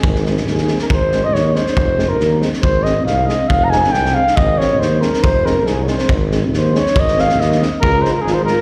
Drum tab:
SD |-ooooooo|--o-o-oo|--o-o-oo|--o-o-o-|
BD |o-------|o-------|o-------|o-------|

SD |--oooo-o|--o-o-oo|--o-o-oo|--o-o-oo|
BD |o-------|o-------|o-------|o-------|

SD |-oooooo-|--o-o-o-|
BD |o-------|o-------|